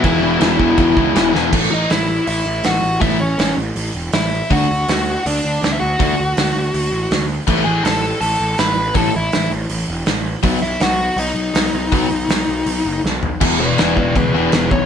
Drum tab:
CC |x-x-x-x-|x-------|--------|--------|
HH |--------|--o-o-o-|o-o-o-o-|o-o-o-o-|
SD |--o---oo|--o---o-|--o---o-|--o---o-|
FT |--------|--------|--------|--------|
BD |o--ooo--|o-------|o-------|o-------|

CC |--------|x-------|--------|--------|
HH |o-o-o-o-|--o-o-o-|o-o-o-o-|o-o-o-o-|
SD |--o---o-|--o---o-|--o---o-|--o---o-|
FT |--------|--------|--------|--------|
BD |o-------|o-------|o-------|o-------|

CC |--------|x-x-x-x-|
HH |o-o-o---|--------|
SD |--o---o-|--o---o-|
FT |-------o|--------|
BD |o-------|o--oo--o|